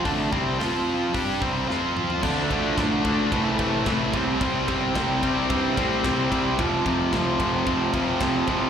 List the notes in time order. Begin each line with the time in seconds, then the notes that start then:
0.04 D2 D3 A3 D4, kick, open hi-hat
0.31 C2 C3 G3 C4, kick
0.58 F2 F3 C4 F4, snare, open hi-hat
1.14 G2 G3 D4 G4, kick, open hi-hat
1.41 C2 C3 G3 C4, kick
1.69 F2 F3 C4 F4, snare
1.97 mid tom
2.10 floor tom
2.22 D2 D3 A3 D4 F4 D5, kick, crash
2.49 D2 D3 A3 D4, kick, ride
2.77 A2 D3 A3 D4, kick, snare, ride
3.05 D2 D3 A3 D4, kick, ride
3.30 C2 A2 E3 A3 E4 C5, kick, ride
3.59 A2 C3 E3 A3, kick, ride
3.86 C2 A2 E3 A3, kick, snare, ride
4.12 C2 C3 G3 C4 C5 G5, kick, ride
4.41 C2 C3 G3 C4, kick, ride
4.68 G1 C3 G3 C4, kick, ride
4.95 C2 C3 G3 C4, kick, snare, ride
5.22 C2 C3 G3 C4, kick, ride
5.50 G2 C3 G3 C4, kick, ride
5.76 A2 C3 G3 C4, kick, ride
6.03 C2 C3 G3 C4, kick, snare, ride
6.30 C2 C3 G3 C4, kick, ride
6.58 F1 F2 C3 F3 F4 A5, kick, ride
6.85 F1 F2 C3 F3, kick, ride
7.12 C2 F2 C3 F3, kick, snare, ride
7.40 F1 F2 C3 F3, kick, ride
7.67 F1 F2 C3 F3, kick, ride
7.94 F2 C3 F3, kick, ride
8.20 F1 F2 C3 F3, kick, snare, ride
8.47 C2 F2 C3 F3, kick, ride